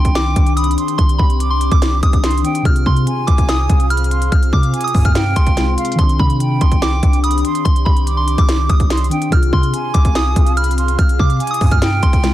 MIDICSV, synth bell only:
0, 0, Header, 1, 2, 480
1, 0, Start_track
1, 0, Key_signature, -3, "minor"
1, 0, Tempo, 416667
1, 1137, Time_signature, 4, 2, 24, 8
1, 14213, End_track
2, 0, Start_track
2, 0, Title_t, "Synth bell"
2, 0, Program_c, 0, 98
2, 0, Note_on_c, 0, 84, 95
2, 140, Note_off_c, 0, 84, 0
2, 176, Note_on_c, 0, 86, 91
2, 628, Note_off_c, 0, 86, 0
2, 652, Note_on_c, 0, 87, 87
2, 855, Note_off_c, 0, 87, 0
2, 1129, Note_on_c, 0, 84, 103
2, 1334, Note_off_c, 0, 84, 0
2, 1364, Note_on_c, 0, 83, 81
2, 1709, Note_off_c, 0, 83, 0
2, 1733, Note_on_c, 0, 84, 79
2, 1936, Note_off_c, 0, 84, 0
2, 1977, Note_on_c, 0, 86, 82
2, 2315, Note_off_c, 0, 86, 0
2, 2336, Note_on_c, 0, 87, 85
2, 3013, Note_off_c, 0, 87, 0
2, 3064, Note_on_c, 0, 89, 95
2, 3263, Note_off_c, 0, 89, 0
2, 3300, Note_on_c, 0, 84, 87
2, 3750, Note_off_c, 0, 84, 0
2, 3769, Note_on_c, 0, 86, 82
2, 3974, Note_off_c, 0, 86, 0
2, 4022, Note_on_c, 0, 87, 89
2, 4471, Note_off_c, 0, 87, 0
2, 4496, Note_on_c, 0, 89, 94
2, 4698, Note_off_c, 0, 89, 0
2, 4976, Note_on_c, 0, 89, 90
2, 5178, Note_off_c, 0, 89, 0
2, 5219, Note_on_c, 0, 86, 86
2, 5556, Note_off_c, 0, 86, 0
2, 5577, Note_on_c, 0, 87, 85
2, 5779, Note_off_c, 0, 87, 0
2, 5820, Note_on_c, 0, 89, 88
2, 6157, Note_off_c, 0, 89, 0
2, 6177, Note_on_c, 0, 84, 87
2, 6854, Note_off_c, 0, 84, 0
2, 6896, Note_on_c, 0, 84, 92
2, 7098, Note_off_c, 0, 84, 0
2, 7138, Note_on_c, 0, 83, 93
2, 7589, Note_off_c, 0, 83, 0
2, 7620, Note_on_c, 0, 84, 91
2, 7820, Note_off_c, 0, 84, 0
2, 7859, Note_on_c, 0, 86, 89
2, 8309, Note_off_c, 0, 86, 0
2, 8335, Note_on_c, 0, 87, 85
2, 8537, Note_off_c, 0, 87, 0
2, 8812, Note_on_c, 0, 84, 104
2, 9015, Note_off_c, 0, 84, 0
2, 9046, Note_on_c, 0, 83, 81
2, 9389, Note_off_c, 0, 83, 0
2, 9415, Note_on_c, 0, 84, 80
2, 9617, Note_off_c, 0, 84, 0
2, 9660, Note_on_c, 0, 86, 82
2, 9997, Note_off_c, 0, 86, 0
2, 10017, Note_on_c, 0, 87, 82
2, 10694, Note_off_c, 0, 87, 0
2, 10744, Note_on_c, 0, 89, 95
2, 10943, Note_off_c, 0, 89, 0
2, 10981, Note_on_c, 0, 84, 84
2, 11430, Note_off_c, 0, 84, 0
2, 11449, Note_on_c, 0, 86, 84
2, 11654, Note_off_c, 0, 86, 0
2, 11701, Note_on_c, 0, 87, 87
2, 12150, Note_off_c, 0, 87, 0
2, 12176, Note_on_c, 0, 89, 95
2, 12378, Note_off_c, 0, 89, 0
2, 12655, Note_on_c, 0, 89, 87
2, 12857, Note_off_c, 0, 89, 0
2, 12899, Note_on_c, 0, 86, 89
2, 13236, Note_off_c, 0, 86, 0
2, 13256, Note_on_c, 0, 87, 87
2, 13458, Note_off_c, 0, 87, 0
2, 13498, Note_on_c, 0, 89, 90
2, 13836, Note_off_c, 0, 89, 0
2, 13855, Note_on_c, 0, 84, 86
2, 14213, Note_off_c, 0, 84, 0
2, 14213, End_track
0, 0, End_of_file